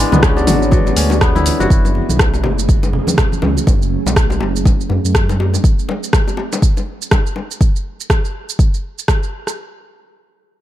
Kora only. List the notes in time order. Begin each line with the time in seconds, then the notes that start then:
Already playing: E3 F#3 B3
0.00 G#3
0.12 B3
0.22 C#4
0.47 F#3
0.72 F#3
0.97 C#4
1.21 B3
1.35 E4
1.60 F#4